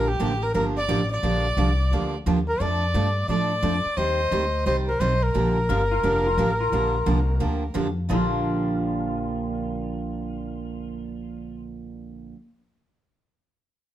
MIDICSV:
0, 0, Header, 1, 7, 480
1, 0, Start_track
1, 0, Key_signature, -2, "major"
1, 0, Tempo, 343249
1, 1719, Time_signature, 4, 2, 24, 8
1, 19502, End_track
2, 0, Start_track
2, 0, Title_t, "Fiddle"
2, 0, Program_c, 0, 110
2, 107, Note_on_c, 0, 67, 89
2, 588, Note_on_c, 0, 70, 79
2, 609, Note_off_c, 0, 67, 0
2, 752, Note_off_c, 0, 70, 0
2, 760, Note_on_c, 0, 70, 80
2, 900, Note_off_c, 0, 70, 0
2, 1070, Note_on_c, 0, 74, 91
2, 1516, Note_off_c, 0, 74, 0
2, 1561, Note_on_c, 0, 74, 92
2, 3010, Note_off_c, 0, 74, 0
2, 3473, Note_on_c, 0, 70, 74
2, 3646, Note_on_c, 0, 74, 80
2, 3667, Note_off_c, 0, 70, 0
2, 4592, Note_off_c, 0, 74, 0
2, 4600, Note_on_c, 0, 74, 92
2, 5555, Note_on_c, 0, 75, 86
2, 5576, Note_off_c, 0, 74, 0
2, 6514, Note_off_c, 0, 75, 0
2, 6522, Note_on_c, 0, 75, 76
2, 6661, Note_off_c, 0, 75, 0
2, 6825, Note_on_c, 0, 72, 74
2, 6995, Note_on_c, 0, 75, 76
2, 7016, Note_off_c, 0, 72, 0
2, 7304, Note_on_c, 0, 70, 80
2, 7325, Note_off_c, 0, 75, 0
2, 10839, Note_off_c, 0, 70, 0
2, 19502, End_track
3, 0, Start_track
3, 0, Title_t, "Flugelhorn"
3, 0, Program_c, 1, 56
3, 116, Note_on_c, 1, 67, 87
3, 602, Note_on_c, 1, 70, 94
3, 623, Note_off_c, 1, 67, 0
3, 759, Note_off_c, 1, 70, 0
3, 767, Note_on_c, 1, 70, 90
3, 905, Note_off_c, 1, 70, 0
3, 1087, Note_on_c, 1, 74, 103
3, 1525, Note_off_c, 1, 74, 0
3, 1568, Note_on_c, 1, 74, 107
3, 3014, Note_off_c, 1, 74, 0
3, 3477, Note_on_c, 1, 70, 97
3, 3654, Note_on_c, 1, 74, 96
3, 3675, Note_off_c, 1, 70, 0
3, 4590, Note_off_c, 1, 74, 0
3, 4598, Note_on_c, 1, 74, 103
3, 5555, Note_on_c, 1, 72, 99
3, 5576, Note_off_c, 1, 74, 0
3, 6513, Note_off_c, 1, 72, 0
3, 6522, Note_on_c, 1, 72, 86
3, 6661, Note_off_c, 1, 72, 0
3, 6833, Note_on_c, 1, 70, 86
3, 6998, Note_on_c, 1, 72, 92
3, 7019, Note_off_c, 1, 70, 0
3, 7313, Note_on_c, 1, 70, 99
3, 7334, Note_off_c, 1, 72, 0
3, 10843, Note_off_c, 1, 70, 0
3, 19502, End_track
4, 0, Start_track
4, 0, Title_t, "Electric slide guitar"
4, 0, Program_c, 2, 29
4, 7958, Note_on_c, 2, 70, 92
4, 8261, Note_off_c, 2, 70, 0
4, 8271, Note_on_c, 2, 65, 76
4, 8434, Note_off_c, 2, 65, 0
4, 8437, Note_on_c, 2, 70, 83
4, 8740, Note_off_c, 2, 70, 0
4, 8760, Note_on_c, 2, 65, 82
4, 8917, Note_on_c, 2, 70, 81
4, 8920, Note_off_c, 2, 65, 0
4, 9221, Note_off_c, 2, 70, 0
4, 9236, Note_on_c, 2, 65, 84
4, 9387, Note_off_c, 2, 65, 0
4, 9403, Note_on_c, 2, 65, 99
4, 10334, Note_off_c, 2, 65, 0
4, 11325, Note_on_c, 2, 65, 105
4, 16226, Note_off_c, 2, 65, 0
4, 19502, End_track
5, 0, Start_track
5, 0, Title_t, "Steel-string acoustic guitar"
5, 0, Program_c, 3, 25
5, 274, Note_on_c, 3, 50, 75
5, 281, Note_on_c, 3, 53, 72
5, 281, Note_on_c, 3, 58, 74
5, 284, Note_on_c, 3, 62, 81
5, 291, Note_on_c, 3, 67, 79
5, 440, Note_off_c, 3, 50, 0
5, 443, Note_off_c, 3, 53, 0
5, 444, Note_off_c, 3, 58, 0
5, 445, Note_off_c, 3, 62, 0
5, 448, Note_off_c, 3, 67, 0
5, 759, Note_on_c, 3, 50, 57
5, 762, Note_on_c, 3, 53, 66
5, 764, Note_on_c, 3, 58, 64
5, 767, Note_on_c, 3, 62, 70
5, 769, Note_on_c, 3, 67, 61
5, 1067, Note_off_c, 3, 50, 0
5, 1069, Note_off_c, 3, 53, 0
5, 1070, Note_off_c, 3, 58, 0
5, 1071, Note_off_c, 3, 62, 0
5, 1072, Note_off_c, 3, 67, 0
5, 1237, Note_on_c, 3, 50, 74
5, 1238, Note_on_c, 3, 53, 80
5, 1245, Note_on_c, 3, 58, 83
5, 1246, Note_on_c, 3, 62, 82
5, 1246, Note_on_c, 3, 67, 89
5, 1401, Note_off_c, 3, 50, 0
5, 1402, Note_off_c, 3, 53, 0
5, 1405, Note_off_c, 3, 58, 0
5, 1405, Note_off_c, 3, 67, 0
5, 1406, Note_off_c, 3, 62, 0
5, 1717, Note_on_c, 3, 50, 58
5, 1723, Note_on_c, 3, 53, 68
5, 1728, Note_on_c, 3, 58, 62
5, 1729, Note_on_c, 3, 67, 69
5, 1733, Note_on_c, 3, 62, 69
5, 2026, Note_off_c, 3, 50, 0
5, 2029, Note_off_c, 3, 53, 0
5, 2031, Note_off_c, 3, 58, 0
5, 2032, Note_off_c, 3, 67, 0
5, 2034, Note_off_c, 3, 62, 0
5, 2199, Note_on_c, 3, 50, 71
5, 2203, Note_on_c, 3, 53, 70
5, 2207, Note_on_c, 3, 58, 69
5, 2207, Note_on_c, 3, 62, 85
5, 2212, Note_on_c, 3, 67, 70
5, 2362, Note_off_c, 3, 50, 0
5, 2364, Note_off_c, 3, 53, 0
5, 2366, Note_off_c, 3, 58, 0
5, 2366, Note_off_c, 3, 62, 0
5, 2368, Note_off_c, 3, 67, 0
5, 2690, Note_on_c, 3, 50, 57
5, 2695, Note_on_c, 3, 58, 62
5, 2696, Note_on_c, 3, 53, 64
5, 2700, Note_on_c, 3, 62, 62
5, 2703, Note_on_c, 3, 67, 67
5, 2992, Note_off_c, 3, 50, 0
5, 2995, Note_off_c, 3, 58, 0
5, 2996, Note_off_c, 3, 53, 0
5, 2997, Note_off_c, 3, 62, 0
5, 2999, Note_off_c, 3, 67, 0
5, 3164, Note_on_c, 3, 50, 73
5, 3169, Note_on_c, 3, 53, 78
5, 3170, Note_on_c, 3, 58, 77
5, 3173, Note_on_c, 3, 62, 77
5, 3176, Note_on_c, 3, 67, 81
5, 3324, Note_off_c, 3, 50, 0
5, 3327, Note_off_c, 3, 53, 0
5, 3327, Note_off_c, 3, 58, 0
5, 3329, Note_off_c, 3, 62, 0
5, 3330, Note_off_c, 3, 67, 0
5, 3637, Note_on_c, 3, 53, 56
5, 3647, Note_on_c, 3, 62, 58
5, 3649, Note_on_c, 3, 57, 64
5, 3652, Note_on_c, 3, 69, 73
5, 3946, Note_off_c, 3, 53, 0
5, 3951, Note_off_c, 3, 62, 0
5, 3952, Note_off_c, 3, 57, 0
5, 3953, Note_off_c, 3, 69, 0
5, 4114, Note_on_c, 3, 53, 77
5, 4122, Note_on_c, 3, 57, 78
5, 4126, Note_on_c, 3, 62, 75
5, 4131, Note_on_c, 3, 69, 81
5, 4279, Note_off_c, 3, 53, 0
5, 4283, Note_off_c, 3, 57, 0
5, 4285, Note_off_c, 3, 62, 0
5, 4287, Note_off_c, 3, 69, 0
5, 4600, Note_on_c, 3, 53, 64
5, 4606, Note_on_c, 3, 57, 56
5, 4612, Note_on_c, 3, 62, 63
5, 4617, Note_on_c, 3, 69, 66
5, 4908, Note_off_c, 3, 53, 0
5, 4911, Note_off_c, 3, 57, 0
5, 4914, Note_off_c, 3, 62, 0
5, 4916, Note_off_c, 3, 69, 0
5, 5069, Note_on_c, 3, 53, 85
5, 5077, Note_on_c, 3, 57, 67
5, 5078, Note_on_c, 3, 62, 81
5, 5080, Note_on_c, 3, 69, 83
5, 5237, Note_off_c, 3, 53, 0
5, 5241, Note_off_c, 3, 57, 0
5, 5241, Note_off_c, 3, 62, 0
5, 5242, Note_off_c, 3, 69, 0
5, 5554, Note_on_c, 3, 51, 58
5, 5558, Note_on_c, 3, 55, 60
5, 5559, Note_on_c, 3, 60, 62
5, 5566, Note_on_c, 3, 67, 60
5, 5569, Note_on_c, 3, 72, 68
5, 5865, Note_off_c, 3, 51, 0
5, 5867, Note_off_c, 3, 55, 0
5, 5867, Note_off_c, 3, 60, 0
5, 5871, Note_off_c, 3, 67, 0
5, 5872, Note_off_c, 3, 72, 0
5, 6036, Note_on_c, 3, 51, 71
5, 6040, Note_on_c, 3, 60, 77
5, 6041, Note_on_c, 3, 55, 78
5, 6045, Note_on_c, 3, 67, 74
5, 6052, Note_on_c, 3, 72, 88
5, 6201, Note_off_c, 3, 51, 0
5, 6203, Note_off_c, 3, 55, 0
5, 6203, Note_off_c, 3, 60, 0
5, 6205, Note_off_c, 3, 67, 0
5, 6209, Note_off_c, 3, 72, 0
5, 6515, Note_on_c, 3, 51, 58
5, 6519, Note_on_c, 3, 55, 61
5, 6521, Note_on_c, 3, 60, 65
5, 6523, Note_on_c, 3, 67, 68
5, 6523, Note_on_c, 3, 72, 71
5, 6825, Note_off_c, 3, 51, 0
5, 6828, Note_off_c, 3, 55, 0
5, 6829, Note_off_c, 3, 60, 0
5, 6830, Note_off_c, 3, 67, 0
5, 6830, Note_off_c, 3, 72, 0
5, 6998, Note_on_c, 3, 51, 83
5, 7004, Note_on_c, 3, 55, 84
5, 7005, Note_on_c, 3, 60, 76
5, 7009, Note_on_c, 3, 67, 81
5, 7012, Note_on_c, 3, 72, 87
5, 7162, Note_off_c, 3, 51, 0
5, 7165, Note_off_c, 3, 55, 0
5, 7165, Note_off_c, 3, 60, 0
5, 7168, Note_off_c, 3, 67, 0
5, 7169, Note_off_c, 3, 72, 0
5, 7472, Note_on_c, 3, 50, 66
5, 7478, Note_on_c, 3, 53, 64
5, 7479, Note_on_c, 3, 58, 59
5, 7479, Note_on_c, 3, 62, 68
5, 7486, Note_on_c, 3, 67, 66
5, 7784, Note_off_c, 3, 50, 0
5, 7788, Note_off_c, 3, 53, 0
5, 7788, Note_off_c, 3, 58, 0
5, 7788, Note_off_c, 3, 62, 0
5, 7791, Note_off_c, 3, 67, 0
5, 7959, Note_on_c, 3, 50, 76
5, 7965, Note_on_c, 3, 53, 82
5, 7968, Note_on_c, 3, 58, 77
5, 7970, Note_on_c, 3, 62, 79
5, 7971, Note_on_c, 3, 67, 80
5, 8123, Note_off_c, 3, 50, 0
5, 8126, Note_off_c, 3, 53, 0
5, 8127, Note_off_c, 3, 58, 0
5, 8128, Note_off_c, 3, 62, 0
5, 8129, Note_off_c, 3, 67, 0
5, 8437, Note_on_c, 3, 50, 63
5, 8441, Note_on_c, 3, 53, 64
5, 8442, Note_on_c, 3, 58, 63
5, 8449, Note_on_c, 3, 62, 68
5, 8449, Note_on_c, 3, 67, 65
5, 8748, Note_off_c, 3, 50, 0
5, 8750, Note_off_c, 3, 53, 0
5, 8750, Note_off_c, 3, 58, 0
5, 8753, Note_off_c, 3, 62, 0
5, 8753, Note_off_c, 3, 67, 0
5, 8923, Note_on_c, 3, 50, 66
5, 8927, Note_on_c, 3, 53, 72
5, 8932, Note_on_c, 3, 58, 78
5, 8933, Note_on_c, 3, 62, 75
5, 8934, Note_on_c, 3, 67, 81
5, 9085, Note_off_c, 3, 50, 0
5, 9087, Note_off_c, 3, 53, 0
5, 9089, Note_off_c, 3, 58, 0
5, 9090, Note_off_c, 3, 62, 0
5, 9090, Note_off_c, 3, 67, 0
5, 9403, Note_on_c, 3, 50, 63
5, 9408, Note_on_c, 3, 53, 62
5, 9409, Note_on_c, 3, 58, 67
5, 9414, Note_on_c, 3, 67, 65
5, 9415, Note_on_c, 3, 62, 62
5, 9711, Note_off_c, 3, 50, 0
5, 9713, Note_off_c, 3, 53, 0
5, 9714, Note_off_c, 3, 58, 0
5, 9716, Note_off_c, 3, 67, 0
5, 9717, Note_off_c, 3, 62, 0
5, 9875, Note_on_c, 3, 53, 71
5, 9877, Note_on_c, 3, 50, 75
5, 9879, Note_on_c, 3, 58, 81
5, 9880, Note_on_c, 3, 62, 73
5, 9882, Note_on_c, 3, 67, 76
5, 10042, Note_off_c, 3, 50, 0
5, 10042, Note_off_c, 3, 53, 0
5, 10043, Note_off_c, 3, 58, 0
5, 10044, Note_off_c, 3, 62, 0
5, 10045, Note_off_c, 3, 67, 0
5, 10349, Note_on_c, 3, 50, 68
5, 10353, Note_on_c, 3, 53, 60
5, 10353, Note_on_c, 3, 58, 71
5, 10354, Note_on_c, 3, 62, 70
5, 10355, Note_on_c, 3, 67, 66
5, 10664, Note_off_c, 3, 50, 0
5, 10666, Note_off_c, 3, 53, 0
5, 10666, Note_off_c, 3, 58, 0
5, 10667, Note_off_c, 3, 62, 0
5, 10667, Note_off_c, 3, 67, 0
5, 10823, Note_on_c, 3, 50, 70
5, 10829, Note_on_c, 3, 53, 71
5, 10834, Note_on_c, 3, 58, 72
5, 10837, Note_on_c, 3, 62, 78
5, 10839, Note_on_c, 3, 67, 88
5, 10996, Note_off_c, 3, 50, 0
5, 10999, Note_off_c, 3, 53, 0
5, 11001, Note_off_c, 3, 58, 0
5, 11003, Note_off_c, 3, 62, 0
5, 11004, Note_off_c, 3, 67, 0
5, 11309, Note_on_c, 3, 46, 71
5, 11320, Note_on_c, 3, 50, 80
5, 11321, Note_on_c, 3, 53, 77
5, 11335, Note_on_c, 3, 58, 87
5, 11335, Note_on_c, 3, 62, 75
5, 11343, Note_on_c, 3, 67, 74
5, 17253, Note_off_c, 3, 46, 0
5, 17258, Note_off_c, 3, 50, 0
5, 17259, Note_off_c, 3, 53, 0
5, 17266, Note_off_c, 3, 58, 0
5, 17266, Note_off_c, 3, 62, 0
5, 17270, Note_off_c, 3, 67, 0
5, 19502, End_track
6, 0, Start_track
6, 0, Title_t, "Upright bass"
6, 0, Program_c, 4, 32
6, 0, Note_on_c, 4, 34, 88
6, 262, Note_off_c, 4, 34, 0
6, 275, Note_on_c, 4, 33, 95
6, 742, Note_off_c, 4, 33, 0
6, 762, Note_on_c, 4, 31, 92
6, 1226, Note_off_c, 4, 31, 0
6, 1240, Note_on_c, 4, 33, 96
6, 1705, Note_off_c, 4, 33, 0
6, 1717, Note_on_c, 4, 34, 88
6, 2183, Note_off_c, 4, 34, 0
6, 2192, Note_on_c, 4, 36, 95
6, 2660, Note_off_c, 4, 36, 0
6, 2677, Note_on_c, 4, 38, 79
6, 3143, Note_off_c, 4, 38, 0
6, 3162, Note_on_c, 4, 39, 99
6, 3625, Note_off_c, 4, 39, 0
6, 3637, Note_on_c, 4, 41, 88
6, 4103, Note_off_c, 4, 41, 0
6, 4115, Note_on_c, 4, 43, 103
6, 4582, Note_off_c, 4, 43, 0
6, 4591, Note_on_c, 4, 45, 79
6, 5060, Note_off_c, 4, 45, 0
6, 5069, Note_on_c, 4, 41, 108
6, 5362, Note_off_c, 4, 41, 0
6, 5551, Note_on_c, 4, 39, 80
6, 6020, Note_off_c, 4, 39, 0
6, 6031, Note_on_c, 4, 38, 101
6, 6500, Note_off_c, 4, 38, 0
6, 6514, Note_on_c, 4, 36, 87
6, 6982, Note_off_c, 4, 36, 0
6, 6991, Note_on_c, 4, 35, 99
6, 7460, Note_off_c, 4, 35, 0
6, 7475, Note_on_c, 4, 34, 92
6, 7943, Note_off_c, 4, 34, 0
6, 7960, Note_on_c, 4, 31, 94
6, 8426, Note_off_c, 4, 31, 0
6, 8435, Note_on_c, 4, 29, 80
6, 8903, Note_off_c, 4, 29, 0
6, 8915, Note_on_c, 4, 33, 102
6, 9384, Note_off_c, 4, 33, 0
6, 9397, Note_on_c, 4, 34, 82
6, 9865, Note_off_c, 4, 34, 0
6, 9877, Note_on_c, 4, 36, 101
6, 10345, Note_off_c, 4, 36, 0
6, 10358, Note_on_c, 4, 38, 83
6, 10825, Note_off_c, 4, 38, 0
6, 10836, Note_on_c, 4, 41, 101
6, 11305, Note_off_c, 4, 41, 0
6, 11323, Note_on_c, 4, 34, 96
6, 17204, Note_off_c, 4, 34, 0
6, 19502, End_track
7, 0, Start_track
7, 0, Title_t, "Muted upright bass strokes"
7, 5388, Note_on_c, 9, 29, 37
7, 5528, Note_off_c, 9, 29, 0
7, 19502, End_track
0, 0, End_of_file